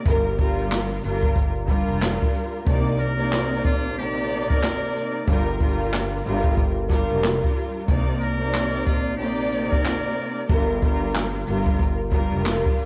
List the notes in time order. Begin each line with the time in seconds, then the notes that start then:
0.05 G1 G2 G3 F4 A#4, kick, closed hi-hat
0.37 G2 G3 F4 A#4, kick, closed hi-hat
0.72 snare, clap, closed hi-hat
1.03 G1 G2 G3 F4 A#4, closed hi-hat
1.23 kick
1.36 kick, closed hi-hat
1.67 G2 G3 F4 A#4, kick, closed hi-hat
1.88 F1
2.01 snare, clap, closed hi-hat
2.22 kick
2.34 closed hi-hat
2.66 C2 C3 A#3 D#4 D5, kick, closed hi-hat
2.98 A#4, closed hi-hat
3.16 C3 A#3 D#4 D5
3.33 snare, clap, closed hi-hat
3.64 A#1 F4, kick, closed hi-hat
3.98 C3 A#3 D#4 G4 D5, closed hi-hat
4.29 closed hi-hat
4.49 G1 A#4, kick
4.62 snare, clap, closed hi-hat
4.95 closed hi-hat
5.27 G1 G2 G3 F4 A#4, kick, closed hi-hat
5.59 G2 G3 F4 A#4, kick, closed hi-hat
5.94 snare, clap, closed hi-hat
6.25 G1 G2 G3 F4 A#4, closed hi-hat
6.44 kick
6.58 kick, closed hi-hat
6.89 G2 G3 F4 A#4, kick, snare, closed hi-hat
7.10 F1
7.23 snare, clap, closed hi-hat
7.44 kick
7.56 closed hi-hat
7.88 C2 C3 A#3 D#4 D5, kick, closed hi-hat
8.20 A#4, closed hi-hat
8.38 C3 A#3 D#4 D5
8.54 snare, clap, closed hi-hat
8.86 A#1 F4, kick, closed hi-hat
9.17 C3 A#3 G4, closed hi-hat
9.21 D#4 D5
9.51 closed hi-hat
9.70 G1 A#4, kick
9.84 snare, clap, closed hi-hat
10.17 open hi-hat
10.49 G1 G2 G3 F4 A#4, kick, closed hi-hat
10.81 G2 G3 F4 A#4, kick, closed hi-hat
11.15 snare, clap, closed hi-hat
11.47 G1 G2 G3 F4 A#4, closed hi-hat
11.66 kick
11.79 kick, closed hi-hat
12.10 G2 G3 F4 A#4, kick, closed hi-hat
12.32 F1
12.45 snare, clap, closed hi-hat
12.66 kick
12.78 closed hi-hat